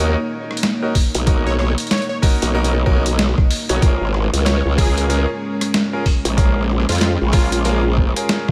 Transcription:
0.00 0.16 D#2 loud
0.00 3.78 A#3 medium
0.00 0.16 C#4 medium
0.00 0.16 D#4 medium
0.00 3.78 D#4 medium
0.00 0.16 F#4 medium
0.00 0.16 A#4 loud
0.00 1.23 C#5 medium
0.00 closed hi-hat medium
0.51 cross-stick medium
0.57 closed hi-hat medium
0.63 snare loud
0.63 closed hi-hat soft
0.82 0.93 C#4 medium
0.82 0.93 D#4 medium
0.82 0.93 F#4 medium
0.82 0.93 A#4 medium
0.95 kick medium
0.95 open hi-hat medium
1.15 1.75 B1 loud
1.15 closed hi-hat medium
1.27 1.51 C#4 medium
1.27 1.51 D#4 medium
1.27 1.51 F#4 medium
1.27 1.51 A#4 loud
1.27 3.80 D#5 medium
1.27 kick loud
1.27 closed hi-hat medium
1.47 1.54 C#5 medium
1.59 1.71 C#5 medium
1.59 cross-stick medium
1.78 closed hi-hat medium
1.80 closed hi-hat soft
1.87 closed hi-hat soft
1.91 2.03 C#5 medium
1.91 snare loud
1.91 closed hi-hat medium
1.98 closed hi-hat soft
2.02 closed hi-hat soft
2.09 2.18 C#5 medium
2.22 2.47 C#4 loud
2.22 2.47 D#4 medium
2.22 2.47 F#4 medium
2.22 2.47 A#4 loud
2.22 kick loud
2.22 open hi-hat medium
2.42 2.85 B1 loud
2.42 closed hi-hat medium
2.54 2.71 C#4 loud
2.54 2.71 D#4 medium
2.54 2.71 F#4 medium
2.54 2.71 A#4 loud
2.64 closed hi-hat medium
2.86 3.35 B1 loud
2.86 3.03 C#4 loud
2.86 3.03 D#4 medium
2.86 3.03 F#4 medium
2.86 3.03 A#4 loud
2.86 kick medium
3.06 closed hi-hat medium
3.19 snare loud
3.19 closed hi-hat medium
3.38 kick loud
3.38 cross-stick soft
3.51 open hi-hat medium
3.69 3.80 B1 loud
3.69 3.80 C#4 medium
3.69 3.80 D#4 medium
3.69 3.80 F#4 medium
3.69 3.80 C#5 medium
3.69 closed hi-hat medium
3.82 3.99 A#1 loud
3.82 8.51 G#3 medium
3.82 4.06 C#4 medium
3.82 8.51 C#4 medium
3.82 4.06 F4 medium
3.82 4.06 G#4 medium
3.82 4.06 A#4 loud
3.82 6.35 A#4 medium
3.82 kick loud
3.82 closed hi-hat medium
4.01 4.30 G#1 loud
4.14 cross-stick medium
4.33 4.62 C#2 loud
4.33 closed hi-hat medium
4.45 4.73 C#5 medium
4.45 snare loud
4.45 closed hi-hat medium
4.65 5.26 C#2 loud
4.78 5.07 C#4 loud
4.78 5.07 F4 medium
4.78 5.06 G#4 loud
4.78 5.07 G#4 medium
4.78 5.07 A#4 loud
4.78 kick loud
4.78 open hi-hat medium
4.98 closed hi-hat medium
5.09 5.26 C#4 medium
5.09 5.26 F4 medium
5.09 5.27 G#4 medium
5.09 5.26 A#4 loud
5.09 closed hi-hat medium
5.61 cross-stick medium
5.61 closed hi-hat medium
5.74 snare loud
5.74 closed hi-hat soft
5.93 6.04 C#4 medium
5.93 6.04 F4 medium
5.93 6.04 G#4 medium
5.93 6.04 A#4 medium
6.06 kick medium
6.06 open hi-hat medium
6.25 6.86 A#1 loud
6.25 closed hi-hat medium
6.37 6.62 C#4 medium
6.37 6.62 F4 medium
6.37 6.62 G#4 medium
6.37 8.51 G#4 medium
6.37 6.62 A#4 loud
6.37 kick loud
6.37 closed hi-hat medium
6.70 cross-stick soft
6.80 cross-stick soft
6.89 7.18 F2 loud
6.89 6.97 F4 medium
6.89 cross-stick soft
6.89 closed hi-hat medium
6.92 closed hi-hat medium
6.95 closed hi-hat soft
6.98 7.13 F4 medium
6.98 snare loud
6.98 closed hi-hat soft
7.01 closed hi-hat medium
7.22 8.14 A#1 loud
7.32 7.57 C#4 loud
7.32 7.84 F4 loud
7.32 7.57 F4 medium
7.32 7.57 G#4 medium
7.32 7.57 A#4 loud
7.32 kick loud
7.32 open hi-hat medium
7.52 closed hi-hat medium
7.65 7.82 C#4 loud
7.65 7.82 F4 medium
7.65 7.82 G#4 medium
7.65 7.82 A#4 loud
7.65 closed hi-hat medium
7.97 kick medium
8.16 8.51 C#4 medium
8.16 8.51 F4 medium
8.16 8.51 G#4 medium
8.16 8.51 A#4 medium
8.16 closed hi-hat medium
8.29 snare loud
8.29 closed hi-hat medium
8.48 cross-stick soft

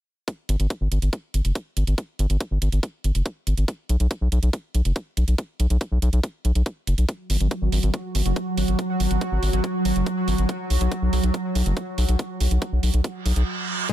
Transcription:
0.28 kick loud
0.28 closed hi-hat medium
0.49 0.56 G#1 medium
0.49 closed hi-hat loud
0.60 0.67 G#1 medium
0.60 closed hi-hat medium
0.70 kick loud
0.70 closed hi-hat medium
0.81 0.88 G#1 medium
0.92 0.99 G#1 loud
0.92 closed hi-hat loud
1.02 1.09 G#1 medium
1.02 closed hi-hat medium
1.13 kick loud
1.13 closed hi-hat medium
1.34 1.41 G#1 medium
1.34 closed hi-hat medium
1.45 1.52 F#1 medium
1.45 closed hi-hat medium
1.55 kick loud
1.55 closed hi-hat medium
1.77 1.84 G#1 medium
1.77 closed hi-hat loud
1.87 1.94 G#1 medium
1.87 closed hi-hat medium
1.98 kick loud
1.98 closed hi-hat medium
2.19 2.26 G#1 loud
2.19 closed hi-hat medium
2.30 2.37 G#1 medium
2.30 closed hi-hat medium
2.40 kick loud
2.40 closed hi-hat medium
2.51 2.58 G#1 medium
2.62 2.69 G#1 loud
2.62 closed hi-hat medium
2.72 2.79 G#1 medium
2.72 closed hi-hat medium
2.83 kick loud
2.83 closed hi-hat medium
3.04 3.11 G#1 medium
3.04 closed hi-hat medium
3.15 3.22 F#1 medium
3.15 closed hi-hat medium
3.26 kick loud
3.26 closed hi-hat medium
3.47 3.54 G#1 medium
3.47 closed hi-hat medium
3.58 3.65 G#1 medium
3.58 closed hi-hat medium
3.68 kick loud
3.68 closed hi-hat medium
3.89 3.96 B1 medium
3.89 closed hi-hat medium
4.00 4.07 B1 medium
4.00 closed hi-hat medium
4.11 kick loud
4.11 closed hi-hat medium
4.21 4.28 B1 medium
4.32 4.39 B1 loud
4.32 closed hi-hat medium
4.43 4.50 B1 medium
4.43 closed hi-hat medium
4.53 kick loud
4.53 closed hi-hat medium
4.75 4.82 B1 loud
4.75 closed hi-hat medium
4.85 4.92 F#1 medium
4.85 closed hi-hat medium
4.96 kick loud
4.96 closed hi-hat medium
5.17 5.24 B1 medium
5.17 closed hi-hat medium
5.28 5.35 B1 medium
5.28 closed hi-hat medium
5.38 kick loud
5.38 closed hi-hat medium
5.60 5.67 B1 medium
5.60 closed hi-hat medium
5.70 5.77 B1 medium
5.70 closed hi-hat medium
5.81 kick loud
5.81 closed hi-hat medium
5.92 5.99 B1 medium
6.02 6.09 B1 loud
6.02 closed hi-hat medium
6.13 6.20 B1 medium
6.13 closed hi-hat medium
6.23 kick loud
6.23 closed hi-hat medium
6.45 6.52 B1 loud
6.45 closed hi-hat medium
6.55 6.62 B1 medium
6.55 closed hi-hat medium
6.66 kick loud
6.66 closed hi-hat medium
6.87 6.94 F#1 medium
6.87 closed hi-hat medium
6.98 7.05 B1 medium
6.98 closed hi-hat medium
7.09 13.47 F#3 medium
7.09 13.47 F#4 medium
7.09 kick loud
7.09 closed hi-hat medium
7.30 7.37 G#1 medium
7.30 open hi-hat loud
7.40 7.47 G#1 medium
7.40 closed hi-hat medium
7.51 kick loud
7.51 closed hi-hat medium
7.62 7.69 G#1 medium
7.72 7.79 G#1 loud
7.72 open hi-hat medium
7.83 7.90 G#1 medium
7.83 closed hi-hat medium
7.94 kick loud
7.94 closed hi-hat medium
8.15 8.22 G#1 medium
8.15 open hi-hat loud
8.26 8.33 F#1 medium
8.26 closed hi-hat medium
8.36 kick loud
8.36 closed hi-hat medium
8.57 8.64 G#1 medium
8.57 open hi-hat medium
8.68 8.75 G#1 medium
8.68 closed hi-hat medium
8.79 kick loud
8.79 closed hi-hat medium
9.00 9.07 G#1 medium
9.00 open hi-hat loud
9.11 9.18 G#1 medium
9.11 closed hi-hat medium
9.21 kick loud
9.21 closed hi-hat medium
9.32 9.39 G#1 medium
9.43 9.50 G#1 loud
9.43 open hi-hat medium
9.53 9.60 G#1 medium
9.53 closed hi-hat medium
9.64 kick loud
9.64 closed hi-hat medium
9.85 9.92 G#1 medium
9.85 open hi-hat loud
9.96 10.03 F#1 medium
9.96 closed hi-hat medium
10.06 kick loud
10.06 closed hi-hat medium
10.28 10.35 G#1 medium
10.28 open hi-hat medium
10.38 10.45 G#1 medium
10.38 closed hi-hat medium
10.49 kick loud
10.49 closed hi-hat medium
10.70 10.77 B1 loud
10.70 open hi-hat medium
10.81 10.88 B1 medium
10.81 closed hi-hat medium
10.92 kick loud
10.92 closed hi-hat medium
11.02 11.09 B1 medium
11.13 11.20 B1 loud
11.13 open hi-hat medium
11.23 11.30 B1 medium
11.23 closed hi-hat medium
11.34 kick loud
11.34 closed hi-hat medium
11.55 11.62 B1 medium
11.55 open hi-hat loud
11.66 11.73 F#1 medium
11.66 closed hi-hat medium
11.77 kick loud
11.77 closed hi-hat medium
11.98 12.05 B1 medium
11.98 open hi-hat medium
12.09 12.16 B1 medium
12.09 closed hi-hat medium
12.19 kick loud
12.19 closed hi-hat medium
12.40 12.47 B1 loud
12.40 open hi-hat loud
12.51 12.58 B1 medium
12.51 closed hi-hat medium
12.62 kick loud
12.62 closed hi-hat medium
12.72 12.79 B1 medium
12.83 12.90 B1 loud
12.83 open hi-hat medium
12.94 13.01 B1 medium
12.94 closed hi-hat medium
13.04 kick loud
13.04 closed hi-hat medium
13.04 reverse cymbal medium
13.26 13.33 B1 medium
13.26 open hi-hat loud
13.36 13.43 B1 medium
13.36 closed hi-hat medium
13.89 13.93 F#3 medium
13.89 13.93 G#3 medium
13.89 13.93 F#4 medium
13.89 kick loud
13.89 closed hi-hat loud
13.89 crash medium

